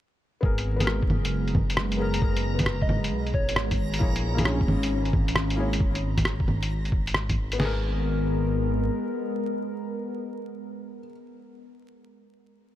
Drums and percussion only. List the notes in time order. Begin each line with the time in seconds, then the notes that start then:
0.43 kick
0.58 closed hi-hat
0.80 closed hi-hat, low bongo
0.87 cross-stick
1.03 kick
1.10 low bongo
1.25 closed hi-hat
1.48 closed hi-hat
1.55 kick, low bongo
1.70 closed hi-hat
1.77 cross-stick
1.92 closed hi-hat
2.14 closed hi-hat
2.22 kick
2.37 closed hi-hat
2.59 kick, closed hi-hat, low bongo
2.66 cross-stick
2.82 kick
2.89 low bongo
3.04 closed hi-hat
3.27 closed hi-hat
3.34 kick
3.49 closed hi-hat
3.56 cross-stick
3.71 kick, closed hi-hat, low bongo
3.94 closed hi-hat
4.01 kick
4.16 closed hi-hat
4.38 closed hi-hat, low bongo
4.45 cross-stick
4.61 kick
4.68 low bongo
4.83 closed hi-hat
5.05 closed hi-hat
5.13 kick, low bongo
5.28 closed hi-hat
5.36 cross-stick
5.50 closed hi-hat
5.73 closed hi-hat
5.80 kick
5.95 closed hi-hat
6.18 kick, closed hi-hat, low bongo
6.25 cross-stick
6.40 kick
6.48 low bongo
6.63 closed hi-hat
6.85 closed hi-hat
6.92 kick
7.07 closed hi-hat
7.14 cross-stick
7.29 kick, closed hi-hat, low bongo
7.52 closed hi-hat
7.60 snare, crash